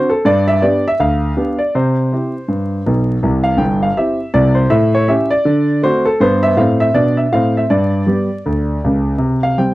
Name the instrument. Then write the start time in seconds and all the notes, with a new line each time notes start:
grand piano
Already playing: C5
0.10 A4
0.25 G2 D5
0.48 E5
0.62 B3 D4 G4 D5
0.88 E5
1.00 D2 F5
1.37 B3 D4 G4
1.58 D5
1.75 C3 C5
2.12 C4 E4 G4
2.48 G2
2.86 B1 B2
3.23 C2 C3
3.44 F5
3.57 G1 G2 G5
3.83 F5
3.97 C4 E4 G4 E5
4.34 C2 C3 D5
4.55 C5
4.70 A2 E5
4.95 C#5
5.08 C#4 E4 G4 E5
5.30 D5
5.45 D3
5.83 A3 C4 F#4 C5
6.05 A4
6.20 G2 B3 C5
6.43 E5
6.57 A2 C4 F5
6.80 E5
6.94 B2 D4 D5
7.17 E5
7.32 A2 C4 F5
7.57 E5
7.70 G2 D5
8.07 G3 B3 G4
8.46 D2
8.84 C#2 C#3
9.18 C3
9.43 F5
9.58 G3 C4 G4 G5